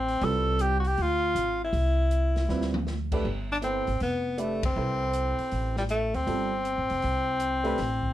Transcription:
Already playing: A1 C4
0.08 open hi-hat
0.21 C2 G3 C4 F4 A4 B4, open hi-hat
0.59 G4, closed hi-hat
0.80 F#4
0.84 G4, open hi-hat
0.98 D2, open hi-hat
1.02 F4
1.35 G#1, closed hi-hat
1.64 E4
1.73 C2, open hi-hat
2.11 closed hi-hat
2.36 snare, open hi-hat
2.49 D2 G3 C4 F4 B4, snare
2.61 snare
2.74 mid tom
2.87 snare
3.12 A3 D4 G4 B4, kick, crash
3.25 G1
3.52 D4
3.62 B3 C4 E4 A4 C5, closed hi-hat
3.87 G#1, open hi-hat
4.00 F1 B3, open hi-hat
4.38 A3 D4 G4 B4, closed hi-hat
4.63 C4, kick, ride
4.76 C2 E4 A4 B4 C5
5.13 closed hi-hat
5.39 muted upright bass stroke, open hi-hat
5.51 A1, open hi-hat
5.76 G3, snare
5.89 A3, closed hi-hat
6.14 D2 C4, open hi-hat
6.27 G1 G3 C4 F4 A4, open hi-hat
6.65 closed hi-hat
6.78 A1
6.90 F1, open hi-hat
7.02 C2, open hi-hat
7.40 closed hi-hat
7.64 A3 D4 G4 B4, open hi-hat
7.78 A1, snare, open hi-hat
8.02 kick

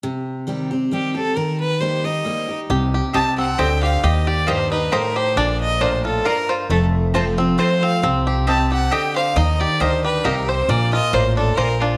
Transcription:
0.03 C3
0.47 D#3 G3 C4 G4
0.71 C4 G4
0.91 D#3 G3 C4 G4
1.15 C4 G4 A4
1.37 D#3 A#4
1.60 B4
1.80 G3 A#3 D#4 G4 C5
2.04 D#4 G4 D#5
2.25 G3 A#3 D#4 G4
2.48 D#4 G4
2.70 C2 C3 G4
2.94 G4
3.13 C2 C3 C4 G4 D#5 G5 A5
3.38 C4 F#5
3.58 D2 D3 C4 G4 C5 D#5 G5
3.83 G4 F5
4.03 D#2 D#3 G4 D#5
4.27 G4 D5
4.47 G2 A#3 G4 C5 D#5 A#5
4.71 D#4 B4
4.92 A2 A#3 G4 A#4 C5 D#5 A#5
5.16 G4 C5
5.36 A#1 A#2 D4 D5
5.60 D#5
5.80 A2 A#3 D4 F4 C5 D5 A#5
6.05 F4 A4
6.25 G2 A#3 F4 A#4 D5 A#5
6.49 F4 C5
6.69 F1 F2 A3 A4
7.14 F3 A3 C4 F4 C5 A5
7.38 C4 F4
7.58 F3 A3 C4 F4 C5 A5
7.83 C4 F5
8.03 C2 C3 C4
8.27 G4
8.47 C3 C4 G4 D#5 G5 A5
8.72 G4 F#5
8.91 D3 C4 G4 D#5 G5
9.16 C5 F5
9.36 D#2 D#3 D#4 D#5
9.60 G4 D5
9.80 D2 A#3 D4 D#4 G4 C5 D#5 A#5
10.04 G4 B4
10.24 C2 C3 A#3 G4 A#4 D#5 A#5
10.49 C5
10.69 A#1 A#2 A#3 D5
10.93 F4 D#5
11.13 A1 A2 A#3 F4 C5 D5 A#5
11.37 D4 A4
11.57 A#1 A#2 A#3 F4 A#4 C5 D5 A#5
11.81 D4 F4

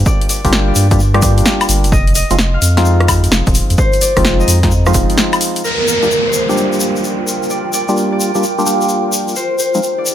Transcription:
Already playing: G3 A#3 D4 F4 G4 A#4 C5
0.06 D5, kick, shaker
0.21 closed hi-hat
0.29 D5, open hi-hat, shaker
0.45 G1 G3 A#3 D4 F4 G4, kick, open hi-hat, shaker
0.52 snare, shaker
0.68 D5
0.75 G2, open hi-hat, shaker
0.91 G3 A#3 D4 F4 G4, kick, closed hi-hat, shaker
0.99 shaker
1.14 G3 A#3 D4 F4 G4, cross-stick, closed hi-hat
1.22 A#3 D4 G4, kick, open hi-hat, shaker
1.38 closed hi-hat, shaker
1.45 snare, shaker
1.61 closed hi-hat, high woodblock, shaker
1.69 G1, open hi-hat, shaker
1.84 F1, closed hi-hat, shaker
1.92 D#5, kick, shaker
2.07 closed hi-hat
2.15 D#5, open hi-hat, shaker
2.30 F1 F3 G#3 C4 D#4 F4, closed hi-hat, shaker
2.39 snare, shaker
2.54 F5
2.62 F2, open hi-hat, shaker
2.77 F3 G#3 C4 D#4 F4, snare, closed hi-hat, shaker
2.85 shaker
3.00 cross-stick, closed hi-hat
3.08 kick, open hi-hat, high woodblock, shaker
3.24 closed hi-hat, shaker
3.32 F1, snare, shaker
3.47 D#1, kick, closed hi-hat, shaker
3.55 open hi-hat, shaker
3.70 F2, closed hi-hat, shaker
3.78 C5, kick, shaker
3.93 closed hi-hat, shaker
4.01 D5, open hi-hat, shaker
4.17 F1 F3 G#3 C4 D#4 F4, kick, cross-stick, open hi-hat, shaker
4.25 snare, shaker
4.40 D#5, shaker
4.48 F2, open hi-hat, shaker
4.63 F3 G#3 C4 D#4 F4, kick, snare, closed hi-hat, shaker
4.71 shaker
4.86 F3 G#3 C4 D#4 F4, cross-stick, closed hi-hat, shaker
4.94 F1, kick, open hi-hat, shaker
5.10 closed hi-hat, shaker
5.18 snare, shaker
5.33 closed hi-hat, high woodblock, shaker
5.41 open hi-hat, shaker
5.56 closed hi-hat, shaker
5.64 F4 A#4, downlifter, shaker
5.82 A#4
5.88 A#4, shaker
6.03 G3 A#3 D4 F4 G4, shaker
6.09 G5, shaker
6.26 C5
6.33 shaker
6.49 G3 A#3 D4 F4 G4, shaker
6.57 shaker
6.73 shaker
6.80 shaker
6.96 shaker
7.04 shaker
7.28 shaker
7.43 shaker
7.50 D5, shaker
7.73 D5, shaker
7.88 G3 A#3 D4 F4 G4, shaker
7.97 shaker
8.12 D5
8.20 shaker
8.35 G3 A#3 D4 F4 G4, shaker
8.43 shaker
8.59 G3 A#3 D4 F4 G4, shaker
8.66 G3 A#3 D4 F4 G4, shaker
8.81 shaker
8.89 shaker
9.13 shaker
9.28 shaker
9.36 D#4 C5, shaker
9.55 G#4, shaker
9.60 C5
9.74 F3 G#3 C4 D#4 F4 F5, shaker
9.83 shaker
9.98 D5
10.06 shaker

